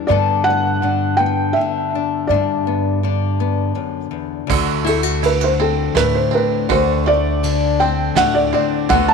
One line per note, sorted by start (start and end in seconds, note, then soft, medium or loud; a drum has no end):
0.00 0.10 D4 soft
0.07 2.24 G2 medium
0.07 1.52 G2 medium
0.07 0.81 D3 medium
0.07 0.46 B3 medium
0.07 0.83 D4 medium
0.07 0.46 D5 medium
0.11 2.33 A4 medium
0.44 1.19 B3 soft
0.44 1.21 F#5 medium
0.82 1.55 D3 medium
0.82 1.95 D4 medium
1.17 2.25 B3 medium
1.17 1.56 G5 medium
1.53 3.02 D3 medium
1.53 2.30 E5 medium
1.95 2.30 D4 soft
2.27 3.72 G2 medium
2.27 3.75 G2 medium
2.27 3.03 D4 medium
2.27 3.71 D5 medium
2.67 3.39 B3 soft
3.03 5.21 D3 medium
3.03 4.46 D4 medium
3.40 4.45 B3 soft
3.75 4.10 F#2 medium
4.11 4.47 E2 soft
4.47 6.70 D2 medium
4.47 5.93 D2 loud
4.47 6.68 D3 medium
4.47 5.23 F#4 medium
4.47 kick medium
4.47 crash medium
4.84 5.95 A3 soft
4.84 5.03 E4 medium
4.84 5.25 A4 medium
4.84 ride medium
5.03 6.69 F#4 medium
5.22 7.43 D3 medium
5.22 5.41 E4 medium
5.22 5.43 B4 medium
5.22 ride medium
5.41 6.68 F#4 soft
5.41 5.49 C5 medium
5.60 6.30 C4 medium
5.60 6.32 C4 soft
5.60 5.98 A4 medium
5.95 6.30 D2 medium
5.95 6.69 A2 medium
5.95 7.06 A3 medium
5.95 7.85 D4 soft
5.95 6.15 B4 medium
5.95 snare medium
5.95 ride medium
6.15 6.34 C5 medium
6.31 7.79 C4 medium
6.31 6.65 C4 soft
6.31 6.72 B4 medium
6.69 8.13 D2 medium
6.69 8.90 D2 medium
6.69 8.88 D3 medium
6.69 7.83 F#4 medium
6.69 7.09 C5 medium
6.69 kick medium
6.69 ride soft
7.06 8.16 A3 medium
7.06 7.83 D5 medium
7.43 8.91 D3 medium
7.43 ride medium
7.80 8.52 C4 medium
7.80 8.53 C4 medium
7.80 8.18 G5 medium
8.15 8.51 D2 medium
8.15 8.90 A2 medium
8.15 9.14 A3 medium
8.15 8.93 D4 medium
8.15 8.34 F#5 loud
8.15 snare medium
8.15 ride soft
8.35 8.52 D5 medium
8.53 8.97 C4 medium
8.53 8.86 C4 soft
8.53 8.88 D5 medium
8.89 9.14 D2 medium
8.89 9.14 D3 medium
8.89 9.14 A3 medium
8.89 9.14 B3 medium
8.89 9.14 F#4 medium
8.89 9.09 F#5 medium
8.89 kick medium
8.89 ride soft
9.08 9.14 A5 loud